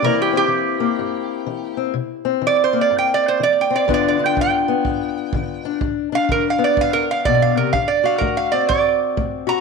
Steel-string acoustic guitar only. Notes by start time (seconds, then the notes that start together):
0.02 C3 E3 A#3 C4 E4
0.33 C4
0.48 E3
0.80 A#3
0.99 G2
1.47 E3
1.77 C4
1.94 C3
2.25 C4
2.42 E3
2.73 A#3
2.91 G2
3.40 E3
3.70 C4
3.88 G2 D3 B3 D4 F4
4.19 D4
4.37 D3
4.68 B3
4.86 G2
5.34 D3
5.65 D4
5.81 G2
6.12 D4
6.30 D3
6.58 B3
6.79 G2
7.28 B2
7.56 C3
7.73 D3
8.04 F#4
8.22 A3
8.53 C4
8.70 A2
9.17 A3
9.47 F#4